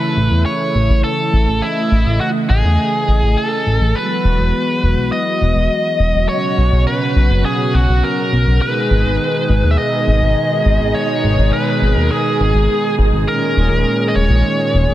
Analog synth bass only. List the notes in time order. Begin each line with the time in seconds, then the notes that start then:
0.17 A1
0.31 E2
0.75 A1
0.90 A1
1.33 A1
1.48 A1
1.91 A1
2.06 A1
2.50 A1
2.64 E2
3.08 A1
3.23 A1
3.66 A1
3.81 A1
4.25 E1
4.39 E1
4.83 E1
4.97 B1
5.41 E1
5.56 E1
5.99 E1
6.14 E1
6.58 B1
6.72 B1
7.16 B1
7.30 F#1
7.74 B1
7.89 B1
8.33 B1
8.47 B1
8.91 G#1
9.05 G#1
9.49 G#1
9.63 D#2
10.07 G#1
10.22 G#1
10.65 G#1
10.80 G#1
11.24 G#1
11.38 G#1
11.82 G#1
11.96 D#2
12.40 G#1
12.55 G#1
12.98 G#1
13.13 G#1
13.57 D#1
13.71 D#1
14.15 D#1
14.30 A#1
14.73 D#1
14.88 D#1